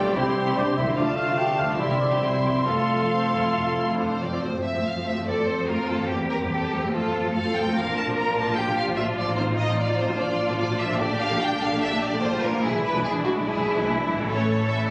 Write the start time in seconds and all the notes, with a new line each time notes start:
Already playing: C3 D4 F4 G4 D5 G5
0.02 G3 F4
0.07 B2 C4
0.12 E4 G4 C5
0.16 C2 C3 G3 C4 E4 C6
0.26 C3 E4
0.46 C3 E4
0.56 C2 C3 D4 E4 D5
0.67 C3 C4
0.76 C2 C3 D3 E4 E5
0.84 C3 F3
0.88 A3 E4
0.93 A3 D4 F4 D5 A5
0.97 D2 D3 F4 F5 A5
1.08 D3 F4
1.16 F4 F5
1.28 D3 F4
1.38 D4 G4 G5
1.48 D3 D4
1.58 D2 C3 D3 F4 F5
1.66 D3 G3 F4
1.70 C4
1.75 C3 E4 G4 E5 C6
1.79 C2 C3 G3 E4 C6
1.89 C3 G4
2.00 D4 D5
2.10 C3 G4
2.21 C2 C3 C4 E4 G4 C5
2.32 C3 E4
2.44 C2 C3 G4
2.48 F2
2.53 C3 F3 G4
2.57 C4
2.62 A3 F4 A4 F5
2.66 F1 F2 F3 F4
2.76 F2 F4
2.99 F2 F4
3.11 C4
3.22 F2 C4
3.32 F1 F2 E4 F4
3.43 F2 F4
3.55 F1 F2 F4
3.66 F2 F4
3.76 E4
3.88 F2 F4
3.98 F1 F2 D4 F4 C5
4.11 F2 C4
4.21 F1 F2 C4 F4 D5
4.25 F2
4.30 F2 A3 F4
4.34 C4
4.39 F3 A3 C4 F4
4.43 F2 C5
4.53 F2 F3 A3
4.64 E5
4.74 F2 F3 A3
4.85 F5
4.95 F2 F3
5.06 F2 F3 A3 E5
5.16 F2 F3 A3
5.27 F2 F3 A3 A4 D5
5.37 F2 F3 A3
5.48 C5
5.58 F2 F3 A3
5.69 F2 F3 A3 F4 A#4
5.79 F2 F3
5.89 E2 F2 F3 A3 A4
5.97 F2 F3 A3 A#3
6.02 C4
6.06 E2 G4
6.10 G3 A#3 G4
6.20 E2 G3 A#3
6.31 A#4
6.42 E2 G3 A#3
6.52 A4
6.62 E2 G3
6.73 E2 F2 G3 A#3 G4
6.81 E2 G3 A3 A#3
6.85 C4
6.89 F4
6.93 F2 F3 A3 F4 A4
7.04 F2 F3 A3
7.24 F2 F3 A3
7.35 F2 F3 A3 A4 F5
7.45 F2 F3
7.55 F2 A#2 F3 A3 G5
7.63 F2 F3 A3 A#3
7.68 D4
7.72 D4 F4
7.76 A#1 F3 A#3 A#4 F5
7.86 A#1 F3 A#3
7.97 A5
8.07 A#1 F3 A#3
8.17 A#5
8.27 A#1 F3
8.37 A#1 F3 A#3 A5
8.47 A#1 F3 A#3
8.57 A#1 F3 A#3 G4 G5
8.67 A#1 F3 A#3
8.77 F5
8.87 A#1 F3 A#3
8.96 A#1 F3 A#3 F4 E5
9.07 A#1 F3
9.17 A#1 A2 F3 A#3 D5
9.25 A#1 F3 A#3 C4
9.30 D#4
9.34 A1 F3 C4 F4 C5
9.38 D#4
9.49 A1 F3 C4
9.57 D#5
9.69 A1 F3 C4
9.77 D5
9.89 A1 F3 A3
9.98 A1 A#2 F3 C4 C5
10.06 A1 F3 A#3 C4
10.10 D4
10.15 F4 D5
10.19 A#1 F3 A#3 D4
10.29 A#1 F3 A#3
10.49 A#1 F3 A#3
10.58 A#1 F3 A#3 D5
10.69 A#1 F3
10.79 A#1 A#2 F3 A#3 E5
10.87 A#1 F3 A#3
10.91 D4
10.96 G4 D5
11.00 A#1 D3 A#3 G4
11.11 A#1 D3 A#3
11.20 F5
11.31 A#1 D3 A#3
11.40 D4 G5
11.51 A#1 D3 G3
11.61 A#1 D3 A#3 F5
11.71 A#1 D3 A#3
11.81 A#1 D3 A#3 E5
11.92 A#1 D3 A#3
12.02 D5
12.12 A#1 D3 A#3
12.22 A#1 D3 A#3 F4 C5
12.32 A#1 D3 G3
12.42 A#1 B2 D3 A#3 A#4
12.50 A#1 D3 A#3 D4
12.55 E4
12.59 E3 G#3 D4 G#4
12.63 B1 E4
12.73 B1 E3 G#3
12.83 B4
12.94 B1 E3 G#3
13.04 D4 G#4
13.15 B1 E3
13.24 B1 E3 G#3 F#4
13.35 B1 E3 G#3
13.45 B1 E3 G#3 E4 G#4
13.56 B1 E3 G#3
13.76 B1 E3 G#3
13.87 B1 E3 G#3
13.98 B1 E3
14.08 B1 A2 E3 G#3
14.16 B1 E3 G#3 A3
14.21 E4
14.25 C#4 A4
14.29 A1 E3 A3 E4 A4 C#5
14.70 E3 A3 C#4 E4 E5
14.87 D5